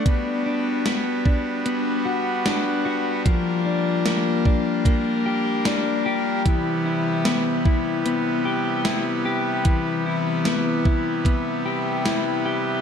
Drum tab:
HH |x-x-x-x-|x-x-x-x-|x-x-x-x-|x-x-x-x-|
SD |--o---o-|--o---o-|--o---o-|--o---o-|
BD |o--o----|o--oo---|o--o----|o--oo---|